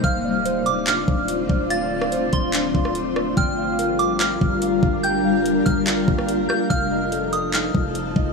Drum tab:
HH |x---x-x-x---x---|x---x-x-x---x---|x---x-x-x---x---|x---x-x-x---x---|
CP |--------x-------|--------x-------|--------x-------|--------x-------|
SD |----------------|---r-------r--r-|----------------|-----------r--r-|
BD |o---------o---o-|------o---o-----|o---------o---o-|------o---o-----|

HH |x---x-x-x---x---|
CP |--------x-------|
SD |----------------|
BD |o---------o---o-|